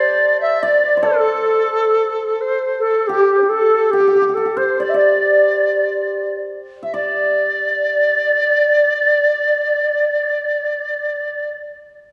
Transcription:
0.00 0.55 G4 medium
0.00 1.02 A4 medium
0.00 0.97 C5 medium
0.00 0.40 D5 medium
0.40 0.64 E5 medium
0.40 0.61 E5 medium
0.62 1.04 D5 medium
0.62 1.07 D5 medium
0.62 3.09 D5 medium
0.97 3.61 C5 soft
1.02 2.67 A4 medium
1.02 3.95 A4 medium
1.02 1.13 A4 medium
1.12 1.18 C5 medium
1.17 2.42 A4 medium
2.41 2.84 C5 medium
2.79 3.08 A4 medium
2.79 3.09 A4 medium
3.07 3.50 G4 medium
3.07 3.93 G4 medium
3.11 3.33 G4 medium
3.34 3.38 A4 soft
3.38 3.44 D4 soft
3.38 3.40 C5 soft
3.45 3.47 E4 soft
3.45 3.52 G4 soft
3.45 3.92 A4 medium
3.51 3.86 A4 medium
3.86 4.12 G4 medium
3.86 3.95 A4 soft
3.93 3.99 G4 medium
3.93 4.30 G4 medium
4.00 4.07 G4 soft
4.07 4.15 G4 medium
4.12 4.35 G4 medium
4.12 4.21 G4 soft
4.22 4.29 G4 soft
4.29 4.37 G4 soft
4.34 4.45 G4 soft
4.34 4.58 A4 medium
4.45 7.59 G4 soft
4.57 7.21 C5 medium
4.57 4.81 C5 medium
4.57 4.84 C5 medium
4.79 4.91 D5 medium
4.79 4.94 D5 medium
4.79 4.96 D5 medium
4.89 4.98 E5 medium
4.94 6.93 D5 soft
4.94 6.35 D5 medium
4.94 6.32 D5 medium
6.83 9.12 E5 soft
6.83 6.95 E5 soft
6.93 11.56 D5 medium
6.93 11.52 D5 medium
6.93 11.53 D5 medium

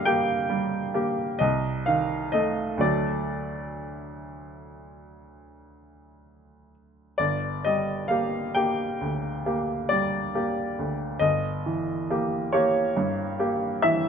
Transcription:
0.00 1.37 G2 soft
0.00 1.42 D3 soft
0.00 0.06 A#3 soft
0.00 0.07 G4 soft
0.00 1.43 D5 medium
0.00 1.39 D#5 medium
0.00 1.43 F5 medium
0.05 0.45 A#3 soft
0.05 0.46 G4 soft
0.05 1.40 G5 medium
0.50 1.22 G3 soft
0.94 1.36 A#3 soft
0.94 1.37 G4 soft
1.39 2.78 C2 soft
1.39 1.86 D#5 medium
1.86 2.63 D#3 soft
1.86 2.34 F5 medium
2.32 2.77 A3 soft
2.32 2.78 A4 soft
2.32 2.81 D#5 medium
2.77 7.12 D2 soft
2.77 7.13 F#3 soft
2.77 7.14 A3 soft
2.77 7.14 A4 soft
2.77 6.70 D5 medium
7.18 11.17 G1 soft
7.18 7.64 D5 medium
7.65 8.38 G3 soft
7.65 8.10 D#5 medium
8.08 8.51 A#3 soft
8.08 8.51 G4 soft
8.08 8.54 F5 medium
8.55 8.97 A#3 soft
8.55 8.97 G4 soft
8.55 9.90 G5 medium
9.01 9.72 D2 soft
9.46 9.86 A#3 soft
9.46 9.86 G4 soft
9.89 10.61 G3 soft
9.89 11.20 D5 medium
10.35 10.74 A#3 soft
10.35 10.74 G4 soft
10.79 11.22 D2 soft
11.19 14.09 G1 soft
11.19 12.52 D#5 medium
11.66 12.36 E3 soft
12.10 12.50 A#3 soft
12.10 12.50 G4 soft
12.53 12.93 A#3 soft
12.53 12.93 G4 soft
12.53 13.83 C#5 medium
12.97 13.66 G2 soft
13.39 13.79 A#3 soft
13.39 13.79 G4 soft
13.82 14.09 E3 soft
13.82 14.09 E5 medium

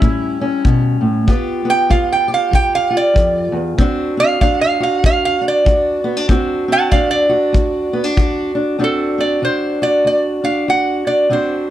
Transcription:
0.00 0.60 A2 medium
0.00 1.27 G3 medium
0.00 0.40 C#4 medium
0.00 0.83 E4 loud
0.00 1.25 G4 medium
0.00 kick medium
0.41 1.25 C#4 medium
0.65 1.00 B2 medium
0.65 kick medium
1.01 1.27 A2 medium
1.27 1.85 G2 medium
1.27 1.64 B3 medium
1.27 1.89 F4 medium
1.27 2.27 G4 medium
1.27 kick medium
1.65 3.75 B3 medium
1.70 1.90 G5 loud
1.89 2.48 G2 medium
1.89 2.89 F4 medium
1.89 2.11 F5 medium
1.89 kick medium
2.12 2.32 G5 medium
2.28 3.75 G4 medium
2.34 2.53 F5 medium
2.51 3.10 G2 medium
2.51 2.74 G5 loud
2.51 kick medium
2.75 2.95 F5 loud
2.90 3.75 F4 medium
2.97 3.57 D5 loud
3.14 3.52 F2 medium
3.14 kick medium
3.52 3.77 E2 medium
3.78 4.36 D2 medium
3.78 4.17 C4 medium
3.78 4.41 D4 medium
3.78 4.80 F#4 medium
3.78 kick medium
4.17 6.29 C4 medium
4.17 4.40 F5 loud
4.41 4.99 D2 medium
4.41 5.41 D4 medium
4.41 4.60 F5 loud
4.41 kick medium
4.61 4.82 F5 loud
4.80 5.65 F#4 medium
4.80 5.04 F5 medium
5.03 5.62 D2 medium
5.03 5.24 F5 loud
5.03 kick medium
5.25 5.45 F5 loud
5.41 6.04 D4 medium
5.48 6.08 D5 medium
5.65 6.24 D2 medium
5.65 6.31 F#4 medium
5.65 kick medium
6.04 6.17 B3 medium
6.17 6.29 D4 medium
6.28 6.87 D2 medium
6.28 6.67 C4 medium
6.28 6.91 D4 medium
6.28 7.28 F#4 medium
6.28 kick medium
6.68 8.78 C4 soft
6.72 6.92 F#5 medium
6.72 6.92 A5 loud
6.91 7.50 D2 medium
6.91 7.93 D4 medium
6.91 7.10 D5 medium
6.91 7.12 F5 medium
6.91 kick medium
7.11 8.34 D5 loud
7.29 8.15 F#4 medium
7.53 8.12 D2 medium
7.53 kick medium
7.93 8.04 B3 medium
8.04 8.54 D4 medium
8.16 8.75 D2 medium
8.16 8.77 F#4 medium
8.16 kick medium
8.55 8.77 D4 medium
8.79 9.37 D2 medium
8.79 9.18 C4 medium
8.79 9.42 D4 medium
8.79 9.82 F#4 medium
8.84 9.21 A4 medium
9.18 11.30 C4 soft
9.18 9.44 D5 medium
9.42 10.01 D2 medium
9.42 10.43 D4 medium
9.42 9.83 C5 medium
9.82 10.68 F#4 medium
9.82 10.06 D5 loud
10.05 10.63 D2 medium
10.05 10.46 D5 medium
10.44 11.06 D4 medium
10.44 10.69 F5 loud
10.68 11.26 D2 medium
10.68 11.32 F#4 medium
10.68 11.09 F#5 loud
11.07 11.31 D4 medium
11.07 11.32 D5 medium
11.29 11.70 D2 medium
11.29 11.69 C4 medium
11.29 11.70 D4 medium
11.29 11.70 F#4 medium
11.29 11.70 C5 medium

